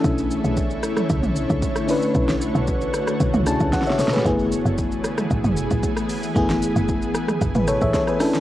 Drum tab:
HH |------------------------------------------o-----|------------------------------------------o-----|------------------------------------------o-----|------------------------------------------o-----|
SH |x--x--x--x--x--x--x--x--x--x--x--x--x--x--x--x--|x--x--x--x--x--x--x--x--x--x--x--x--x--x--x--x--|x--x--x--x--x--x--x--x--x--x--x--x--x--x--x--x--|x--x--x--x--x--x--x--x--x--x--x--x--x--x--x--x--|
SD |------------------r--r-----------------r--------|---o--------------r--r--------r-----o-o-o-o-o-o-|------------------r--r-----------------r--------|---o--------------r--r--------r-----o--r--r--o--|
T2 |---------------------o-----o--------------------|---------------------------o--------------------|---------------------o-----o--------------------|---------------------o-----o--------------------|
BD |o-----------o-----------o--------o--o-----------|o-----------o-----------o--------o--o-----------|o-----------o-----------o--------o--o-----------|o-----------o-----------o--------o--o-----------|